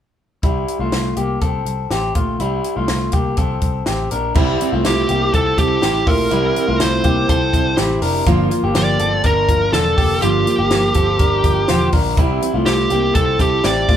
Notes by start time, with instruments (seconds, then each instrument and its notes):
0.43 picked electric bass C2, clean electric guitar G3 E4, kick, closed hi-hat
0.68 closed hi-hat
0.79 picked electric bass C2, clean electric guitar A3 F4
0.92 picked electric bass C2, snare, closed hi-hat
1.16 picked electric bass C2, clean electric guitar A#3 G4, closed hi-hat
1.41 picked electric bass C2, clean electric guitar C4 A4, kick, closed hi-hat
1.66 picked electric bass C2, closed hi-hat
1.91 picked electric bass A1, clean electric guitar C4 G4, snare, closed hi-hat
2.15 picked electric bass A#1, clean electric guitar A3 F4, kick, closed hi-hat
2.40 picked electric bass C2, clean electric guitar G3 E4, closed hi-hat
2.64 closed hi-hat
2.77 picked electric bass C2, clean electric guitar A3 F4
2.88 picked electric bass C2, snare, closed hi-hat
3.12 picked electric bass C2, clean electric guitar A#3 G4, kick, closed hi-hat
3.37 picked electric bass C2, clean electric guitar C4 A4, kick, closed hi-hat
3.61 picked electric bass C2, kick, closed hi-hat
3.86 picked electric bass A1, clean electric guitar C4 G4, snare, closed hi-hat
4.11 picked electric bass A#1, clean electric guitar D4 A#4, closed hi-hat
4.34 picked electric bass C2, steel-string acoustic guitar C3 G3 C4 E4, clean electric guitar G3 E4, kick, crash
4.60 steel-string acoustic guitar G3 C4 E4, closed hi-hat
4.72 picked electric bass C2, clean electric guitar A3 F4
4.84 picked electric bass C2, steel-string acoustic guitar C3 G3 C4 E4, lead electric guitar G4, snare, closed hi-hat
5.07 picked electric bass C2, steel-string acoustic guitar G3 C4 E4, clean electric guitar A#3 G4, closed hi-hat
5.33 picked electric bass C2, clean electric guitar C4 A4, lead electric guitar A4, kick, closed hi-hat
5.57 picked electric bass C2, steel-string acoustic guitar G3 C4 E4, lead electric guitar G4, kick, closed hi-hat
5.81 picked electric bass A1, steel-string acoustic guitar C3 G3 C4 E4, clean electric guitar C4 G4, snare, closed hi-hat
6.07 picked electric bass A#1, clean electric guitar A3 F4, lead electric guitar A#4, kick, open hi-hat
6.30 picked electric bass C2, steel-string acoustic guitar C3 G3 C4 E4, clean electric guitar G3 E4, closed hi-hat
6.54 steel-string acoustic guitar G3 C4 E4, closed hi-hat
6.68 picked electric bass C2, clean electric guitar A3 F4
6.78 picked electric bass C2, steel-string acoustic guitar C3 G3 C4 E4, lead electric guitar C5, snare, closed hi-hat
7.04 picked electric bass C2, steel-string acoustic guitar G3 C4 E4, clean electric guitar A#3 G4, kick, closed hi-hat
7.29 picked electric bass C2, clean electric guitar C4 A4, lead electric guitar C5, kick, closed hi-hat
7.53 picked electric bass C2, steel-string acoustic guitar G3 C4 E4, kick, closed hi-hat
7.77 picked electric bass A1, steel-string acoustic guitar C3 G3 C4 E4, clean electric guitar C4 G4, snare, closed hi-hat
8.02 picked electric bass F1, clean electric guitar D4 A#4, open hi-hat
8.26 picked electric bass G1, steel-string acoustic guitar G2 D3 F3 A#3 F4, clean electric guitar A#3 F4, kick, closed hi-hat
8.51 steel-string acoustic guitar F3 A#3 F4, closed hi-hat
8.63 picked electric bass G1, clean electric guitar A#3 G4
8.74 picked electric bass G1, steel-string acoustic guitar D3 F3 A#3 F4, lead electric guitar D5, snare, closed hi-hat
8.99 picked electric bass G1, steel-string acoustic guitar F3 A#3 F4, clean electric guitar C4 A4, closed hi-hat
9.24 picked electric bass G1, clean electric guitar D4 A#4, lead electric guitar A#4, kick, closed hi-hat
9.49 picked electric bass G1, steel-string acoustic guitar F3 A#3 F4, kick, closed hi-hat
9.72 picked electric bass E1, steel-string acoustic guitar D3 F3 A#3 F4, clean electric guitar D4 A4, lead electric guitar A4, snare, closed hi-hat
9.97 picked electric bass F1, clean electric guitar A#3 G4, kick, open hi-hat
10.21 picked electric bass G1, steel-string acoustic guitar G2 D3 F3 A#3 F4, clean electric guitar A#3 F4, lead electric guitar G4, closed hi-hat
10.46 steel-string acoustic guitar F3 A#3 F4, closed hi-hat
10.59 picked electric bass G1, clean electric guitar A#3 G4
10.70 picked electric bass G1, steel-string acoustic guitar D3 F3 A#3 F4, snare, closed hi-hat
10.94 picked electric bass G1, steel-string acoustic guitar F3 A#3 F4, clean electric guitar C4 A4, kick, closed hi-hat
11.19 picked electric bass G1, clean electric guitar D4 A#4, kick, closed hi-hat
11.43 picked electric bass G1, steel-string acoustic guitar F3 A#3 F4, kick, closed hi-hat
11.68 picked electric bass E1, steel-string acoustic guitar D3 F3 A#3 F4, clean electric guitar F4 C5, snare, closed hi-hat
11.92 picked electric bass A#1, clean electric guitar D4 A#4, kick, open hi-hat
12.17 picked electric bass C2, steel-string acoustic guitar C3 G3 C4 E4, clean electric guitar G3 E4, kick, closed hi-hat
12.41 steel-string acoustic guitar G3 C4 E4, closed hi-hat
12.54 picked electric bass C2, clean electric guitar A3 F4
12.65 picked electric bass C2, steel-string acoustic guitar C3 G3 C4 E4, lead electric guitar G4, snare, closed hi-hat
12.90 picked electric bass C2, steel-string acoustic guitar G3 C4 E4, clean electric guitar A#3 G4, closed hi-hat
13.15 picked electric bass C2, clean electric guitar C4 A4, lead electric guitar A4, kick, closed hi-hat
13.38 picked electric bass C2, steel-string acoustic guitar G3 C4 E4, lead electric guitar G4, kick, closed hi-hat
13.64 picked electric bass A1, steel-string acoustic guitar C3 G3 C4 E4, clean electric guitar C4 G4, lead electric guitar D5, snare, closed hi-hat
13.89 picked electric bass A#1, clean electric guitar A3 F4, kick, open hi-hat